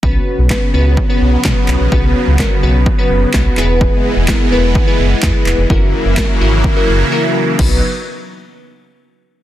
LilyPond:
<<
  \new Staff \with { instrumentName = "Synth keys" } { \time 4/4 \key e \lydian \tempo 4 = 127 <b cis' fis' b'>8. r16 <b cis' fis' b'>8 <b cis' fis' b'>8 r16 <b cis' fis' b'>8 r16 <b cis' fis' b'>8. r16 | <b cis' fis' b'>8. r16 <b cis' fis' ais'>8 <b cis' fis' b'>8 r16 <b cis' fis' b'>8 r16 <b cis' fis' b'>8 <b e' gis' b'>8~ | <b e' gis' b'>8. r16 <b e' gis' ais'>8 <b e' gis' b'>8 r16 <b e' gis' b'>8 r16 <b e' gis' b'>8. r16 | <cis' e' fis' ais'>8. r16 <cis' e' fis' ais'>8 <cis' e' fis' ais'>8 r16 <cis' e' fis' ais'>8 r16 <cis' e' fis' ais'>8. r16 |
<b dis' fis' b'>8 r2. r8 | }
  \new Staff \with { instrumentName = "Supersaw synth" } { \clef bass \time 4/4 \key e \lydian <cis fis b>1~ | <cis fis b>2.~ <cis fis b>8 <e gis b>8~ | <e gis b>1 | <cis e fis ais e'>1 |
<fis b dis'>8 r2. r8 | }
  \new Staff \with { instrumentName = "Sub bass" } { \clef bass \time 4/4 \key e \lydian b,,8 r16 b,,8 r16 cis,8. r16 b,,8 b,16 r16 b,,16 ais,,16 | b,,8. cis,8 r16 b,,8. r16 fis,,8 b,,8 e,,8~ | e,,8 r16 e,,8 r16 e,,8. r16 fis,,8 e,16 r16 e,,16 eis,,16 | fis,,8. fis,,8 r16 gis,,8. r16 fis,,8 r4 |
b,,8 r2. r8 | }
  \new DrumStaff \with { instrumentName = "Drums" } \drummode { \time 4/4 bd4 <hc bd sn>4 bd4 <hc bd sn>8 hc8 | bd4 <hc bd sn>4 bd4 <hc bd sn>8 hc8 | bd4 <hc bd sn>4 bd4 <hc bd sn>8 hc8 | bd4 <hc bd sn>4 bd4 r4 |
<cymc bd>4 r4 r4 r4 | }
>>